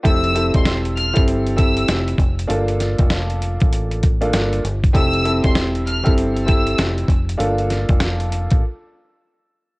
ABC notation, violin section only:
X:1
M:4/4
L:1/16
Q:"Swing 16ths" 1/4=98
K:F
V:1 name="Violin section"
e'3 c' z2 f' z3 e'2 z4 | z16 | e'3 c' z2 f' z3 e'2 z4 | z16 |]